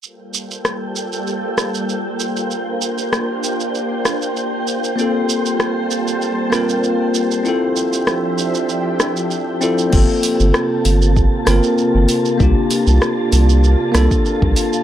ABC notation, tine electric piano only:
X:1
M:4/4
L:1/8
Q:"Swing 16ths" 1/4=97
K:Gdor
V:1 name="Tine electric piano"
z8 | z8 | [B,CFA]4- [B,CFA] [B,CFB]3 | [CEFA]4- [CEFA] z2 [CEFA] |
[B,CFA]4- [B,CFA] [B,CFB]3 | [B,DFG]4- [B,DFG] [B,DFA]3 |]